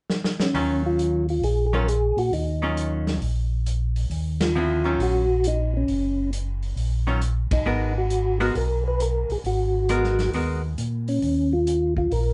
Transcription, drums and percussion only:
0.10 snare medium
0.24 snare medium
0.40 snare medium
0.55 open hi-hat soft
0.99 closed hi-hat soft
1.29 open hi-hat soft
1.43 open hi-hat soft
1.88 closed hi-hat soft
2.18 open hi-hat soft
2.33 open hi-hat soft
2.77 closed hi-hat soft
3.07 snare soft
3.07 open hi-hat soft
3.22 open hi-hat soft
3.66 closed hi-hat soft
3.96 open hi-hat soft
4.11 open hi-hat soft
4.41 snare medium
4.41 ride medium
5.00 open hi-hat soft
5.44 closed hi-hat soft
5.88 open hi-hat soft
6.33 closed hi-hat soft
6.63 open hi-hat soft
6.77 open hi-hat soft
7.22 closed hi-hat soft
7.51 kick medium
7.51 ride medium
8.10 closed hi-hat soft
8.40 open hi-hat soft
8.55 open hi-hat soft
9.00 closed hi-hat soft
9.30 open hi-hat soft
9.44 open hi-hat soft
9.89 closed hi-hat medium
10.04 snare soft
10.19 snare soft
10.19 open hi-hat soft
10.33 open hi-hat soft
10.78 closed hi-hat medium
11.08 open hi-hat soft
11.22 open hi-hat soft
11.67 closed hi-hat soft
11.97 kick soft
12.11 open hi-hat soft

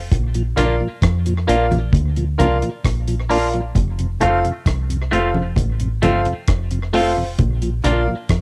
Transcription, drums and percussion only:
0.11 kick loud
0.11 closed hi-hat medium
0.11 low conga medium
0.34 closed hi-hat soft
0.57 closed hi-hat medium
0.57 low conga medium
1.02 kick loud
1.02 cross-stick loud
1.02 closed hi-hat medium
1.02 high conga soft
1.26 closed hi-hat medium
1.49 closed hi-hat medium
1.71 closed hi-hat soft
1.71 high conga medium
1.93 kick loud
1.93 closed hi-hat medium
1.93 low conga medium
2.16 closed hi-hat soft
2.40 closed hi-hat medium
2.40 high conga medium
2.40 low conga medium
2.62 closed hi-hat soft
2.85 kick loud
2.85 cross-stick loud
2.85 closed hi-hat medium
3.08 closed hi-hat medium
3.31 open hi-hat medium
3.53 closed hi-hat soft
3.75 kick loud
3.75 closed hi-hat medium
3.75 low conga medium
3.99 closed hi-hat soft
4.20 closed hi-hat medium
4.20 low conga medium
4.45 closed hi-hat soft
4.66 kick loud
4.66 cross-stick loud
4.66 closed hi-hat medium
4.66 high conga soft
4.90 closed hi-hat medium
5.13 closed hi-hat medium
5.34 high conga medium
5.56 kick loud
5.56 closed hi-hat medium
5.56 low conga medium
5.80 closed hi-hat soft
6.03 closed hi-hat medium
6.03 high conga medium
6.03 low conga medium
6.25 closed hi-hat soft
6.48 kick loud
6.48 cross-stick medium
6.48 closed hi-hat medium
6.71 closed hi-hat medium
6.94 open hi-hat medium
7.38 kick loud
7.38 closed hi-hat medium
7.38 low conga medium
7.62 closed hi-hat soft
7.84 closed hi-hat medium
7.84 low conga medium
8.29 kick loud
8.29 cross-stick loud
8.29 closed hi-hat medium
8.29 high conga soft

